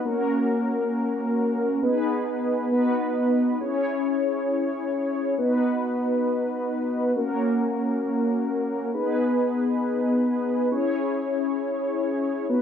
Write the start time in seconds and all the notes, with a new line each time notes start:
0.05 A#3 C#4 F#4 A#4
1.82 B3 D#4 G#4 B4
2.71 B3 D#4 F#4 B4
3.60 C#4 E4 G#4 C#5
5.38 B3 D#4 F#4 B4
7.16 A#3 C#4 F#4 A#4
8.94 B3 D#4 G#4 B4
10.72 C#4 E4 G#4 C#5
12.49 B3 D#4 F#4 B4